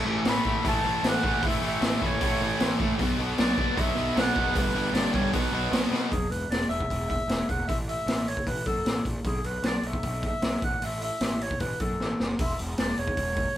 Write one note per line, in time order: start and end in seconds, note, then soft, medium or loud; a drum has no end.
0.05 0.19 A1 medium
0.05 0.26 A2 medium
0.05 0.26 E3 medium
0.05 0.27 A3 medium
0.25 0.39 A1 medium
0.25 0.44 A2 loud
0.25 0.44 E3 loud
0.25 0.45 A3 loud
0.25 0.64 B5 loud
0.25 snare loud
0.25 open hi-hat medium
0.45 0.59 A1 medium
0.45 0.63 A2 medium
0.45 0.64 E3 medium
0.45 0.64 A3 medium
0.45 kick medium
0.65 0.78 A1 loud
0.65 0.82 A2 loud
0.65 0.83 E3 loud
0.65 0.83 A3 loud
0.65 1.10 A5 loud
0.65 kick loud
0.65 open hi-hat medium
0.84 0.98 A1 medium
0.84 1.01 A2 medium
0.84 1.02 E3 medium
0.84 1.03 A3 medium
1.03 1.17 A1 medium
1.03 1.21 A2 medium
1.03 1.22 E3 loud
1.03 1.22 A3 loud
1.03 snare loud
1.03 open hi-hat medium
1.08 1.47 F#5 loud
1.23 1.37 A1 medium
1.23 1.41 A2 medium
1.23 1.41 E3 loud
1.23 1.41 A3 loud
1.23 kick medium
1.42 1.56 A1 medium
1.42 1.59 A2 medium
1.42 1.60 E3 medium
1.42 1.61 A3 loud
1.42 1.64 E5 loud
1.42 kick loud
1.42 open hi-hat medium
1.61 1.75 A1 medium
1.61 1.80 A2 medium
1.61 1.80 E3 medium
1.61 1.81 A3 medium
1.66 2.07 E5 loud
1.81 1.95 A1 medium
1.81 1.99 A2 loud
1.81 2.00 E3 loud
1.81 2.00 A3 loud
1.81 snare loud
1.81 open hi-hat medium
2.00 2.15 A1 medium
2.00 2.19 A2 medium
2.00 2.20 E3 loud
2.00 2.21 A3 loud
2.00 kick medium
2.06 2.82 C#5 medium
2.21 2.34 A1 loud
2.21 2.39 A2 medium
2.21 2.39 E3 loud
2.21 2.40 A3 loud
2.21 kick loud
2.21 open hi-hat medium
2.40 2.54 A1 loud
2.40 2.57 A2 medium
2.40 2.58 E3 medium
2.40 2.58 A3 loud
2.59 2.74 A1 loud
2.59 2.76 A2 loud
2.59 2.77 E3 medium
2.59 2.77 A3 loud
2.59 snare loud
2.59 open hi-hat medium
2.78 2.97 A2 medium
2.78 2.93 A2 medium
2.78 2.97 E3 medium
2.78 2.97 A3 loud
2.78 kick medium
2.98 3.13 B1 medium
2.98 3.18 B2 loud
2.98 3.18 F#3 loud
2.98 3.19 B3 loud
2.98 kick loud
2.98 open hi-hat medium
3.19 3.32 B1 medium
3.19 3.37 B2 medium
3.19 3.37 F#3 medium
3.19 3.38 B3 medium
3.38 3.52 B1 loud
3.38 3.56 B2 loud
3.38 3.57 F#3 loud
3.38 3.58 B3 loud
3.38 3.80 D5 loud
3.38 snare loud
3.38 open hi-hat medium
3.57 3.71 B1 medium
3.57 3.75 B2 loud
3.57 3.76 F#3 loud
3.57 3.78 B3 loud
3.57 kick medium
3.77 3.91 B1 loud
3.77 3.94 B2 loud
3.77 3.95 F#3 loud
3.77 3.96 B3 loud
3.77 4.20 E5 loud
3.77 kick loud
3.77 open hi-hat medium
3.96 4.10 B1 loud
3.96 4.15 B2 medium
3.96 4.15 F#3 loud
3.96 4.16 B3 loud
4.16 4.30 B1 loud
4.16 4.33 B2 medium
4.16 4.33 F#3 loud
4.16 4.34 B3 loud
4.16 4.58 F#5 loud
4.16 snare loud
4.16 open hi-hat medium
4.34 4.49 F#1 medium
4.34 4.53 B2 medium
4.34 4.53 F#3 medium
4.34 5.33 B3 loud
4.34 kick medium
4.55 4.69 G1 medium
4.55 4.73 G2 medium
4.55 4.73 D3 medium
4.55 4.74 G3 loud
4.55 4.95 B4 loud
4.55 kick loud
4.55 open hi-hat medium
4.74 4.88 G1 medium
4.74 4.92 G2 medium
4.74 4.93 D3 medium
4.74 4.93 G3 medium
4.93 5.07 G1 medium
4.93 5.12 G2 loud
4.93 5.12 D3 loud
4.93 5.12 G3 loud
4.93 5.13 D5 loud
4.93 snare loud
4.93 open hi-hat medium
5.13 5.28 G1 medium
5.13 5.32 G2 medium
5.13 5.31 D3 medium
5.13 5.32 G3 loud
5.13 5.32 C#5 medium
5.13 kick medium
5.32 5.47 B1 medium
5.32 5.50 B2 medium
5.32 5.51 F#3 loud
5.32 5.51 B3 loud
5.32 5.88 B4 medium
5.32 kick loud
5.32 open hi-hat medium
5.51 5.66 B1 medium
5.51 5.69 B2 medium
5.51 5.70 F#3 medium
5.51 5.70 B3 medium
5.71 5.85 B1 loud
5.71 5.90 B2 medium
5.71 5.90 F#3 loud
5.71 5.91 B3 loud
5.71 snare loud
5.71 open hi-hat medium
5.91 6.05 B2 medium
5.91 6.10 B2 medium
5.91 6.10 F#3 medium
5.91 6.11 B3 medium
5.91 snare medium
6.11 6.25 E1 medium
6.11 6.32 G#4 medium
6.11 kick loud
6.11 open hi-hat medium
6.30 6.44 E1 medium
6.30 6.50 B4 medium
6.30 open hi-hat medium
6.49 6.64 E1 medium
6.49 6.68 D5 medium
6.49 snare loud
6.49 open hi-hat medium
6.69 6.83 E1 medium
6.69 7.06 E5 loud
6.69 open hi-hat soft
6.81 kick medium
6.90 7.18 E1 medium
6.90 kick medium
6.90 open hi-hat medium
7.10 7.50 E5 loud
7.10 kick medium
7.10 open hi-hat medium
7.28 7.42 E1 medium
7.28 snare loud
7.28 open hi-hat medium
7.49 7.63 E1 medium
7.49 7.67 F#5 medium
7.49 kick medium
7.49 open hi-hat medium
7.67 7.96 A1 medium
7.67 7.76 E5 loud
7.67 kick loud
7.67 open hi-hat medium
7.89 8.29 E5 loud
7.89 open hi-hat medium
8.06 8.34 A1 medium
8.06 snare loud
8.06 open hi-hat medium
8.28 8.46 C#5 medium
8.28 open hi-hat medium
8.37 kick medium
8.47 8.61 A1 medium
8.47 8.65 B4 medium
8.47 kick medium
8.47 open hi-hat medium
8.66 8.80 F#2 medium
8.66 9.03 A4 loud
8.66 kick medium
8.66 open hi-hat medium
8.85 8.99 A1 medium
8.85 snare loud
8.85 open hi-hat medium
9.05 9.19 A#1 medium
9.05 kick medium
9.05 open hi-hat medium
9.24 9.39 B1 medium
9.24 9.46 G#4 medium
9.24 kick loud
9.24 open hi-hat medium
9.44 9.58 B1 medium
9.44 9.67 B4 medium
9.44 open hi-hat medium
9.63 9.77 B1 medium
9.63 9.77 D5 loud
9.63 snare loud
9.63 open hi-hat medium
9.78 9.88 D5 medium
9.83 9.97 B1 medium
9.83 10.24 E5 loud
9.83 open hi-hat medium
9.93 kick medium
10.03 10.31 B1 medium
10.03 kick medium
10.03 open hi-hat medium
10.23 10.61 E5 loud
10.23 kick medium
10.23 open hi-hat soft
10.42 10.56 B1 medium
10.42 snare loud
10.42 open hi-hat medium
10.62 10.76 A1 medium
10.62 10.85 F#5 medium
10.62 kick loud
10.62 open hi-hat medium
10.82 11.10 A1 medium
10.82 11.02 E5 loud
10.82 open hi-hat medium
11.02 11.43 E5 medium
11.02 open hi-hat medium
11.21 11.49 A1 medium
11.21 snare loud
11.21 open hi-hat medium
11.41 11.62 C#5 medium
11.41 open hi-hat medium
11.51 kick medium
11.60 11.74 A1 medium
11.60 11.81 B4 medium
11.60 kick medium
11.60 open hi-hat medium
11.80 11.94 F#2 medium
11.80 12.19 A4 medium
11.80 kick medium
11.80 open hi-hat medium
12.00 12.14 A1 medium
12.00 snare medium
12.20 12.34 F#1 medium
12.20 snare medium
12.39 12.53 E1 medium
12.39 12.58 E5 loud
12.39 kick loud
12.39 open hi-hat medium
12.39 splash medium
12.59 12.73 E1 medium
12.59 open hi-hat medium
12.78 12.92 E1 medium
12.78 13.00 D5 medium
12.78 snare loud
12.78 open hi-hat medium
12.97 13.11 E1 medium
12.97 13.57 C#5 loud
12.97 open hi-hat soft
13.08 kick medium
13.17 13.45 E1 medium
13.17 kick medium
13.17 open hi-hat medium
13.36 kick medium
13.36 open hi-hat medium